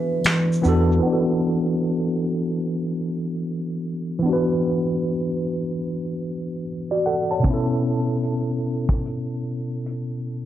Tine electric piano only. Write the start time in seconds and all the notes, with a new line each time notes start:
0.62 E3 B3 D4
0.67 F#4 A4
0.99 E3 B3
1.06 D4 F#4
1.13 A4
4.19 E3 B3
4.26 D4 F#4
4.33 B4
6.91 F#4 D5
7.06 A4 F#5
7.31 C#5 A5
7.39 B2 B3
7.47 C#4
7.51 E4 A4